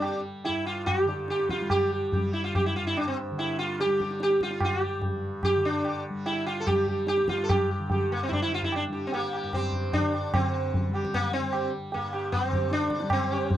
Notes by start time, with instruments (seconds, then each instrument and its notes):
Already playing: tanpura G2 D3 G3, sitar D4
0.02 sitar G4, tabla na
0.45 tanpura G2, sitar E4, tabla tin
0.66 sitar F4, tabla na
0.86 sitar G4, tabla na, tabla ge
1.05 tanpura D3, sitar G4, tabla te
1.28 sitar G4, tabla te
1.39 tabla te
1.49 sitar F4, tabla ke
1.60 tanpura G3, tabla te
1.70 sitar G4, tabla na, tabla ge
1.92 sitar G4
2.12 sitar G4, tabla tin, tabla ge
2.17 tanpura G3
2.33 sitar E4
2.44 sitar F4
2.55 sitar G4, tabla na, tabla ge
2.66 sitar E4
2.76 tanpura G2, sitar F4
2.87 sitar E4
2.97 sitar D4, tabla na
3.08 sitar C4
3.17 tabla na
3.31 tanpura D3
3.38 sitar E4, tabla tin
3.59 sitar F4, tabla na
3.80 sitar G4, tabla te
3.86 tanpura G3, tabla te
4.00 sitar G4, tabla ke
4.11 tabla te
4.20 sitar G4, tabla te
4.30 tabla te
4.41 tanpura G3, sitar F4, tabla ke
4.51 tabla te
4.61 sitar F4, tabla na, tabla ge
4.84 sitar G4
4.99 tanpura G2, tabla tin, tabla ge
5.43 sitar G4, tabla na, tabla ge
5.55 tanpura D3
5.65 sitar D4
5.85 sitar G4, tabla na
6.10 tanpura G3
6.26 sitar E4, tabla tin
6.46 sitar F4, tabla na
6.60 sitar A4
6.67 tanpura G3, sitar G4, tabla na, tabla ge
6.87 sitar G4, tabla ge
7.07 sitar G4, tabla te
7.17 tabla te
7.23 tanpura G2
7.28 sitar F4, tabla ke
7.38 tabla te
7.44 sitar A4
7.49 sitar G4, tabla na, tabla ge
7.71 sitar G4
7.79 tanpura D3
7.90 sitar G4, tabla tin, tabla ge
8.12 sitar A#3, tabla na
8.23 sitar C4
8.28 tanpura G3, sitar E4, tabla na, tabla ge
8.33 sitar D4
8.42 sitar E4
8.52 sitar F4, tabla te
8.62 sitar E4, tabla ge
8.72 sitar D4, tabla na
8.89 tanpura G3
8.93 sitar G4
9.07 sitar C4
9.12 sitar A#3 G4, tabla tin
9.33 sitar G4, tabla na
9.43 tanpura G2
9.53 sitar C4 G4, tabla na, tabla ge
9.72 tabla ge
9.93 sitar D4 G4, tabla tin, tabla ge
9.98 tanpura D3
10.14 tabla na
10.34 tanpura D3, sitar C4, tabla na, tabla ge
10.74 tabla tin, tabla ge
10.88 tanpura G3
10.95 sitar G4, tabla na
11.05 tabla ke
11.14 sitar A#3, tabla na, tabla ge
11.33 sitar C4, tabla te
11.42 tanpura G3
11.53 sitar G4, tabla na
11.92 tanpura G2, sitar A#3, tabla tin
12.13 sitar G4, tabla na
12.32 sitar C4, tabla na, tabla ge
12.50 tanpura D3, sitar G4, tabla ge
12.71 sitar D4, tabla te
12.81 tabla te
12.90 tabla ke
13.00 tanpura G3, tabla te
13.10 sitar C4, tabla na, tabla ge
13.32 sitar G4
13.51 tabla tin, tabla ge